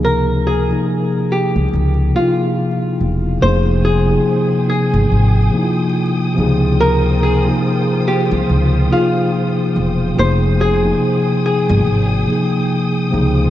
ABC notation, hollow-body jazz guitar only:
X:1
M:4/4
L:1/16
Q:"Swing 16ths" 1/4=71
K:Fm
V:1 name="Hollow-body jazz guitar"
B2 A2 z2 G z3 F2 z4 | c2 A4 A6- A z3 | B2 A2 z2 G z3 F2 z4 | c2 A4 A6- A z3 |]